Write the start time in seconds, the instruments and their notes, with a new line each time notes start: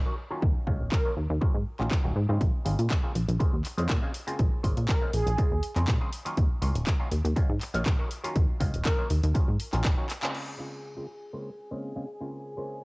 0.06 clav D#3 F#3 A#3 C#4 F#4
0.31 clav D#3 F#3 A#3 C#4 F4
0.42 analog synth bass D#2, kick
0.67 analog synth bass C#2, clav D#3 F#3 A#3 C#4 F4, kick
0.80 analog synth bass D#1
0.92 analog polysynth A#4, kick, clap
1.05 clav D#3 F#3 A#3 C#4 F4
1.17 analog synth bass D#2
1.30 analog synth bass D#2
1.41 clav D#3 F#3 A#3 C#4 F4, kick
1.55 analog synth bass G#2
1.79 analog synth bass A#1, clav D#3 F#3 A#3 C#4 F4, clap
1.91 kick, clap
2.04 analog synth bass D#1, clav D#3 F#3 A#3 C#4 F#4
2.16 analog synth bass G#2
2.29 analog synth bass G#2, clav C#3 G#3 A#3 C4 F4
2.41 analog synth bass A#1, kick, closed hi-hat
2.65 analog synth bass G#1, clav C#3 G#3 A#3 C4 F4, open hi-hat
2.79 analog synth bass A#2, closed hi-hat
2.90 kick, clap, closed hi-hat
3.03 clav C#3 G#3 A#3 C4 F4
3.15 analog synth bass A#1, open hi-hat
3.28 analog synth bass A#1, closed hi-hat
3.39 clav C#3 G#3 A#3 C4 F4, kick, closed hi-hat
3.53 analog synth bass D#2
3.65 clap, open hi-hat
3.77 analog synth bass F2, clav C#3 G#3 A#3 C4 F4, closed hi-hat
3.89 analog synth bass A#2, kick, clap, closed hi-hat
4.02 clav C#3 G#3 A#3 C4 G#4
4.14 open hi-hat
4.27 clav C#3 G#3 A#3 C4 F4, closed hi-hat
4.39 analog synth bass A#1, kick, closed hi-hat
4.63 analog synth bass G#1, clav C#3 G#3 A#3 C4 F4, kick, open hi-hat
4.77 analog synth bass A#2, closed hi-hat
4.89 analog polysynth A#4, kick, clap, closed hi-hat
5.02 clav C#3 G#3 A#3 C4 F4
5.13 analog synth bass A#1, analog polysynth G#4, open hi-hat
5.27 analog synth bass A#1, closed hi-hat
5.38 clav C#3 G#3 A#3 C4 F4, kick, closed hi-hat
5.51 analog synth bass D#2
5.63 open hi-hat
5.76 analog synth bass F2, clav C#3 G#3 A#3 C4 F4, clap, closed hi-hat
5.88 analog synth bass A#2, kick, clap, closed hi-hat
6.01 clav C#3 G#3 A#3 C4 G#4
6.12 open hi-hat
6.25 clav D#3 F#3 A#3 C#4 F4, closed hi-hat
6.37 analog synth bass D#2, kick, closed hi-hat
6.62 analog synth bass C#2, clav D#3 F#3 A#3 C#4 F4, open hi-hat
6.75 analog synth bass D#1, closed hi-hat
6.87 kick, clap, closed hi-hat
6.99 clav D#3 F#3 A#3 C#4 F4
7.11 analog synth bass D#2, open hi-hat
7.25 analog synth bass D#2, closed hi-hat
7.36 clav D#3 F#3 A#3 C#4 F4, kick, closed hi-hat
7.49 analog synth bass G#2
7.61 clap, open hi-hat
7.74 analog synth bass A#1, clav D#3 F#3 A#3 C#4 F4, closed hi-hat
7.86 analog synth bass D#1, kick, clap, closed hi-hat
7.99 clav D#3 F#3 A#3 C#4 F#4
8.11 open hi-hat
8.24 clav D#3 F#3 A#3 C#4 F4, closed hi-hat
8.36 analog synth bass D#2, kick, closed hi-hat
8.60 analog synth bass C#2, clav D#3 F#3 A#3 C#4 F4, kick, open hi-hat
8.74 analog synth bass D#1, closed hi-hat
8.85 analog polysynth A#4, kick, clap, closed hi-hat
8.98 clav D#3 F#3 A#3 C#4 F4
9.10 analog synth bass D#2, open hi-hat
9.23 analog synth bass D#2, closed hi-hat
9.35 clav D#3 F#3 A#3 C#4 F4, kick, closed hi-hat
9.48 analog synth bass G#2
9.60 open hi-hat
9.73 analog synth bass A#1, clav D#3 F#3 A#3 C#4 F4, clap, closed hi-hat
9.85 kick, clap, closed hi-hat
9.98 clav D#3 F#3 A#3 C#4 F#4
10.10 clap, open hi-hat
10.22 clav C#3 G#3 A#3 C4 F4, clap, closed hi-hat
10.35 violin section G#4 G#5, crash
10.59 clav C#3 G#3 A#3 C4 F4
10.97 clav C#3 G#3 A#3 C4 F4
11.33 clav C#3 G#3 A#3 C4 F4
11.71 clav C#3 G#3 A#3 C4 F4
11.96 clav C#3 G#3 A#3 C4 G#4
12.21 clav C#3 G#3 A#3 C4 F4
12.57 clav C#3 G#3 A#3 C4 F4